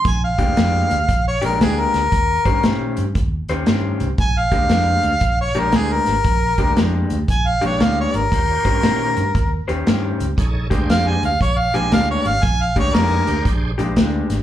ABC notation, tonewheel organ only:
X:1
M:4/4
L:1/8
Q:"Swing" 1/4=116
K:Bbmix
V:1 name="Tonewheel organ"
z8 | z8 | z8 | z8 |
[_DFGc]3 z4 z | [EA=A_d] [=DG_Ac]2 z4 z | z2 [EA=A_d] [=DG_Ac]2 z3 |]